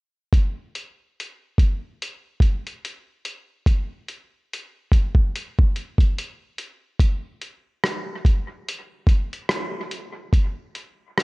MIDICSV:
0, 0, Header, 1, 2, 480
1, 0, Start_track
1, 0, Tempo, 833333
1, 191, Time_signature, 4, 2, 24, 8
1, 6469, End_track
2, 0, Start_track
2, 0, Title_t, "Drums"
2, 188, Note_on_c, 9, 36, 104
2, 194, Note_on_c, 9, 42, 75
2, 246, Note_off_c, 9, 36, 0
2, 252, Note_off_c, 9, 42, 0
2, 433, Note_on_c, 9, 42, 53
2, 491, Note_off_c, 9, 42, 0
2, 691, Note_on_c, 9, 42, 59
2, 749, Note_off_c, 9, 42, 0
2, 911, Note_on_c, 9, 36, 92
2, 918, Note_on_c, 9, 42, 64
2, 968, Note_off_c, 9, 36, 0
2, 976, Note_off_c, 9, 42, 0
2, 1164, Note_on_c, 9, 42, 72
2, 1222, Note_off_c, 9, 42, 0
2, 1383, Note_on_c, 9, 36, 81
2, 1394, Note_on_c, 9, 42, 60
2, 1441, Note_off_c, 9, 36, 0
2, 1452, Note_off_c, 9, 42, 0
2, 1536, Note_on_c, 9, 42, 44
2, 1594, Note_off_c, 9, 42, 0
2, 1640, Note_on_c, 9, 42, 75
2, 1698, Note_off_c, 9, 42, 0
2, 1873, Note_on_c, 9, 42, 62
2, 1930, Note_off_c, 9, 42, 0
2, 2109, Note_on_c, 9, 36, 99
2, 2114, Note_on_c, 9, 42, 80
2, 2167, Note_off_c, 9, 36, 0
2, 2172, Note_off_c, 9, 42, 0
2, 2352, Note_on_c, 9, 42, 52
2, 2410, Note_off_c, 9, 42, 0
2, 2612, Note_on_c, 9, 42, 70
2, 2669, Note_off_c, 9, 42, 0
2, 2832, Note_on_c, 9, 36, 81
2, 2840, Note_on_c, 9, 42, 63
2, 2889, Note_off_c, 9, 36, 0
2, 2898, Note_off_c, 9, 42, 0
2, 2965, Note_on_c, 9, 36, 83
2, 3022, Note_off_c, 9, 36, 0
2, 3085, Note_on_c, 9, 42, 77
2, 3142, Note_off_c, 9, 42, 0
2, 3218, Note_on_c, 9, 36, 88
2, 3276, Note_off_c, 9, 36, 0
2, 3317, Note_on_c, 9, 42, 53
2, 3375, Note_off_c, 9, 42, 0
2, 3446, Note_on_c, 9, 36, 87
2, 3459, Note_on_c, 9, 42, 41
2, 3503, Note_off_c, 9, 36, 0
2, 3516, Note_off_c, 9, 42, 0
2, 3562, Note_on_c, 9, 42, 73
2, 3620, Note_off_c, 9, 42, 0
2, 3792, Note_on_c, 9, 42, 64
2, 3849, Note_off_c, 9, 42, 0
2, 4029, Note_on_c, 9, 36, 96
2, 4034, Note_on_c, 9, 42, 91
2, 4087, Note_off_c, 9, 36, 0
2, 4091, Note_off_c, 9, 42, 0
2, 4271, Note_on_c, 9, 42, 53
2, 4329, Note_off_c, 9, 42, 0
2, 4514, Note_on_c, 9, 37, 89
2, 4529, Note_on_c, 9, 42, 63
2, 4572, Note_off_c, 9, 37, 0
2, 4587, Note_off_c, 9, 42, 0
2, 4751, Note_on_c, 9, 36, 84
2, 4758, Note_on_c, 9, 42, 62
2, 4809, Note_off_c, 9, 36, 0
2, 4816, Note_off_c, 9, 42, 0
2, 5003, Note_on_c, 9, 42, 82
2, 5060, Note_off_c, 9, 42, 0
2, 5224, Note_on_c, 9, 36, 92
2, 5235, Note_on_c, 9, 42, 62
2, 5281, Note_off_c, 9, 36, 0
2, 5292, Note_off_c, 9, 42, 0
2, 5374, Note_on_c, 9, 42, 42
2, 5432, Note_off_c, 9, 42, 0
2, 5467, Note_on_c, 9, 37, 106
2, 5478, Note_on_c, 9, 42, 78
2, 5524, Note_off_c, 9, 37, 0
2, 5536, Note_off_c, 9, 42, 0
2, 5710, Note_on_c, 9, 42, 66
2, 5768, Note_off_c, 9, 42, 0
2, 5949, Note_on_c, 9, 36, 104
2, 5954, Note_on_c, 9, 42, 86
2, 6006, Note_off_c, 9, 36, 0
2, 6011, Note_off_c, 9, 42, 0
2, 6193, Note_on_c, 9, 42, 55
2, 6250, Note_off_c, 9, 42, 0
2, 6437, Note_on_c, 9, 37, 89
2, 6469, Note_off_c, 9, 37, 0
2, 6469, End_track
0, 0, End_of_file